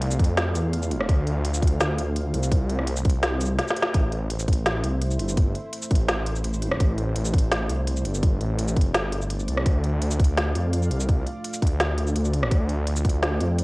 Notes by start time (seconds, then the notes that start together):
Already playing: C2 A3 F4 D5 F5
0.02 closed hi-hat
0.11 shaker
0.19 F2, kick, closed hi-hat
0.24 closed hi-hat
0.37 snare, closed hi-hat
0.55 E2, closed hi-hat, shaker
0.73 closed hi-hat
0.83 shaker
0.91 closed hi-hat
1.00 cross-stick
1.09 D2 C5, kick, closed hi-hat
1.27 closed hi-hat
1.45 closed hi-hat
1.54 shaker
1.62 kick, closed hi-hat
1.67 closed hi-hat
1.80 D2, snare, closed hi-hat, shaker
1.98 closed hi-hat
2.16 closed hi-hat
2.34 C2, closed hi-hat
2.43 shaker
2.52 kick, closed hi-hat
2.70 closed hi-hat
2.79 cross-stick
2.87 closed hi-hat
2.96 shaker
3.05 C2, kick, closed hi-hat
3.10 closed hi-hat
3.23 snare, closed hi-hat
3.41 closed hi-hat, shaker
3.45 shaker
3.59 snare, closed hi-hat
3.68 snare, shaker
3.76 closed hi-hat
3.82 snare
3.94 A1 A3 E4 C5 E5, kick, closed hi-hat
4.12 closed hi-hat
4.30 A1, closed hi-hat
4.39 shaker
4.48 kick, closed hi-hat
4.53 closed hi-hat
4.66 snare, closed hi-hat
4.84 C2, closed hi-hat
5.02 closed hi-hat
5.11 shaker
5.19 G1, closed hi-hat
5.29 shaker
5.37 kick, closed hi-hat
5.55 closed hi-hat
5.73 closed hi-hat
5.82 shaker
5.91 A1, kick, closed hi-hat
5.95 closed hi-hat
6.09 snare, closed hi-hat
6.26 closed hi-hat
6.36 shaker
6.44 A1, closed hi-hat
6.54 shaker
6.62 closed hi-hat
6.71 cross-stick
6.80 A1 D5, kick, closed hi-hat
6.98 closed hi-hat
7.16 A1, closed hi-hat
7.25 shaker
7.34 kick, closed hi-hat
7.38 closed hi-hat
7.51 snare, closed hi-hat
7.69 C2, closed hi-hat
7.87 closed hi-hat
7.97 shaker
8.05 G1, closed hi-hat
8.15 shaker
8.23 kick, closed hi-hat
8.41 A1, closed hi-hat
8.59 closed hi-hat
8.68 shaker
8.77 kick, closed hi-hat
8.81 closed hi-hat
8.94 G1, snare, closed hi-hat
9.12 closed hi-hat
9.22 shaker
9.30 closed hi-hat
9.40 shaker
9.48 C2, closed hi-hat
9.57 cross-stick
9.66 D2 F4 F5, kick, closed hi-hat
9.84 closed hi-hat
10.02 D2, closed hi-hat
10.11 shaker
10.19 kick, closed hi-hat
10.24 closed hi-hat
10.37 snare, closed hi-hat
10.55 F2, closed hi-hat
10.73 closed hi-hat
10.82 shaker
10.91 C2, closed hi-hat
11.00 shaker
11.09 kick, closed hi-hat
11.27 closed hi-hat
11.44 closed hi-hat
11.54 shaker
11.62 D2, kick, closed hi-hat
11.67 closed hi-hat
11.80 snare, closed hi-hat
11.98 closed hi-hat
12.07 shaker
12.16 D2, closed hi-hat
12.25 shaker
12.34 closed hi-hat
12.43 cross-stick
12.52 D2 G5, kick, closed hi-hat
12.69 closed hi-hat
12.87 D2, closed hi-hat
12.96 shaker
13.05 kick, closed hi-hat
13.10 closed hi-hat
13.23 snare, closed hi-hat
13.41 F2, closed hi-hat
13.59 closed hi-hat